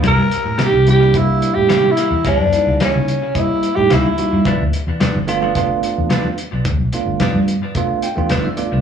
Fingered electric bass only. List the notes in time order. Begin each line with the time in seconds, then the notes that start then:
0.04 C2
0.17 G2
0.45 A2
0.72 C2
1.56 A2
2.11 E2
2.24 C#2
2.39 F#2
2.67 C#2
2.95 C#3
3.77 A2
3.92 C#2
4.19 muted fingered electric bass stroke
4.33 G2
4.46 G1
4.60 D2
4.87 E2
5.15 G1
5.98 E2
6.53 B1
6.65 D2
6.79 B1
7.06 G1
7.34 G2
8.17 E2
8.31 G1
8.59 muted fingered electric bass stroke
8.72 C2